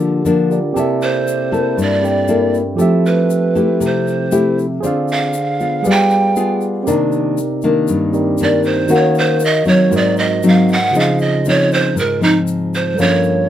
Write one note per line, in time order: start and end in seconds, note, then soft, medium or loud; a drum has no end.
0.00 0.73 D3 medium
0.00 0.21 F3 medium
0.00 0.21 A#3 medium
0.00 0.21 D4 medium
0.00 0.45 F4 medium
0.00 0.28 G4 medium
0.00 0.46 G4 soft
0.00 0.47 A#4 soft
0.00 0.48 D5 medium
0.00 shaker soft
0.25 0.58 F3 medium
0.25 0.58 A#3 medium
0.25 0.58 D4 medium
0.25 shaker medium
0.49 0.75 F4 soft
0.49 0.73 G4 soft
0.49 0.76 A#4 soft
0.49 0.76 D5 soft
0.49 shaker soft
0.73 1.75 C3 medium
0.73 1.48 A#3 soft
0.73 1.99 C4 medium
0.73 2.00 G4 medium
0.73 2.00 A4 medium
0.73 1.48 A4 medium
0.73 shaker medium
0.77 1.49 E4 medium
0.77 2.01 D5 medium
0.77 2.02 E5 medium
1.01 1.83 C5 medium
1.01 shaker soft
1.28 shaker medium
1.52 2.24 A#3 medium
1.52 2.24 E4 medium
1.52 2.24 A4 medium
1.52 shaker soft
1.77 2.77 G2 medium
1.77 shaker medium
1.82 2.56 D5 loud
2.02 2.79 C4 soft
2.02 2.75 G4 soft
2.02 2.77 A4 soft
2.02 2.80 A#4 soft
2.02 2.80 D5 soft
2.02 2.80 G5 soft
2.02 shaker soft
2.28 2.61 A#3 medium
2.28 2.61 E4 medium
2.28 2.61 A4 medium
2.28 shaker medium
2.54 shaker soft
2.76 4.77 F3 medium
2.76 3.78 F3 medium
2.76 3.29 A3 soft
2.76 3.30 E4 soft
2.76 4.78 G4 medium
2.76 4.79 A4 medium
2.76 shaker medium
2.80 4.79 C4 medium
2.80 3.30 G4 medium
2.80 4.80 E5 medium
3.06 3.87 B4 medium
3.06 shaker soft
3.30 shaker medium
3.55 4.28 A3 medium
3.55 4.28 E4 medium
3.55 4.28 G4 medium
3.55 shaker soft
3.80 4.80 C3 medium
3.80 shaker medium
3.86 4.60 C5 medium
4.07 shaker soft
4.31 4.65 A3 medium
4.31 4.65 E4 medium
4.31 4.65 G4 medium
4.31 shaker medium
4.59 shaker soft
4.80 5.83 D3 medium
4.80 5.34 C4 soft
4.80 5.34 F4 soft
4.80 5.82 G#4 medium
4.80 5.83 C5 medium
4.80 shaker medium
4.84 5.34 G#4 medium
4.84 5.84 D5 medium
4.84 5.85 F5 medium
5.08 shaker soft
5.12 5.92 F5 loud
5.33 shaker medium
5.60 6.33 B3 medium
5.60 6.32 F4 medium
5.60 shaker soft
5.82 6.84 G3 medium
5.82 6.85 G3 medium
5.82 6.84 G#4 medium
5.82 6.85 B4 medium
5.82 shaker medium
5.87 6.86 D5 soft
5.87 6.87 F5 medium
5.87 6.64 G5 medium
6.10 shaker soft
6.36 6.83 B3 medium
6.36 6.83 F4 medium
6.36 6.83 G#4 medium
6.36 shaker medium
6.61 shaker soft
6.83 7.86 C3 medium
6.83 7.38 D#3 medium
6.83 7.38 A#3 soft
6.83 8.10 C4 medium
6.83 8.11 G4 medium
6.83 8.12 A#4 medium
6.83 shaker medium
6.88 7.38 D4 medium
6.88 8.13 D#4 medium
6.88 8.12 D5 medium
7.12 shaker soft
7.38 shaker medium
7.62 8.36 D#3 medium
7.62 8.36 A#3 medium
7.62 8.36 D4 medium
7.62 shaker soft
7.88 8.88 G2 medium
7.88 shaker medium
8.12 8.90 C4 soft
8.12 8.91 D#4 soft
8.12 8.90 G4 soft
8.12 8.88 A#4 soft
8.12 8.91 D5 soft
8.12 shaker soft
8.38 8.87 D#3 medium
8.38 8.87 A#3 medium
8.38 8.87 D4 medium
8.38 shaker medium
8.43 8.65 D5 medium
8.63 8.97 C5 medium
8.63 shaker soft
8.87 9.88 D#3 soft
8.87 9.65 D#3 medium
8.87 9.41 A#3 medium
8.87 9.41 C#4 medium
8.87 9.89 F#4 soft
8.87 9.41 F#4 medium
8.87 9.90 A#4 soft
8.87 shaker medium
8.91 9.91 C#5 soft
8.91 9.18 C#5 medium
8.91 9.92 F5 medium
9.15 9.47 C5 medium
9.15 shaker soft
9.40 shaker medium
9.45 9.67 D#5 loud
9.65 10.39 F#3 medium
9.65 10.39 C4 medium
9.65 10.39 D#4 medium
9.65 9.98 C#5 medium
9.65 shaker soft
9.90 10.91 G#2 medium
9.90 10.91 G#3 medium
9.90 10.92 F#4 soft
9.90 10.93 A#4 soft
9.90 shaker medium
9.95 10.94 C5 medium
9.95 10.18 D5 medium
9.95 10.94 D#5 medium
10.16 10.50 D#5 medium
10.16 shaker soft
10.43 10.76 F#3 medium
10.43 10.76 C4 medium
10.43 10.77 D#4 medium
10.43 shaker medium
10.48 10.74 F5 medium
10.68 shaker soft
10.73 11.02 F#5 loud
10.91 12.93 C#3 soft
10.91 12.93 F4 soft
10.91 12.94 G#4 soft
10.91 shaker medium
10.95 11.95 C#3 medium
10.95 11.42 F3 soft
10.95 11.42 C4 soft
10.95 11.42 D#4 medium
10.95 12.95 C5 soft
10.95 12.96 D#5 medium
11.00 11.21 F5 medium
11.19 11.50 D#5 medium
11.19 shaker soft
11.45 11.97 F3 medium
11.45 11.97 C4 medium
11.45 11.97 D#4 medium
11.45 11.73 C#5 medium
11.45 shaker medium
11.71 12.01 C5 medium
11.71 shaker soft
11.95 12.95 G#2 medium
11.95 12.22 A#4 medium
11.95 shaker medium
12.21 12.94 F3 medium
12.21 12.94 C4 medium
12.21 12.95 D#4 medium
12.21 12.38 D#4 medium
12.21 shaker soft
12.47 shaker medium
12.74 13.02 C5 medium
12.74 shaker soft
12.94 13.49 G3 soft
12.94 13.49 A4 soft
12.94 13.49 A#4 soft
12.98 13.49 G2 medium
12.98 13.49 F3 medium
12.98 13.49 A#3 medium
12.98 13.49 C#4 medium
12.98 13.49 C#5 soft
12.98 13.49 C#5 medium
12.98 13.49 F5 medium
12.98 shaker medium
13.23 shaker soft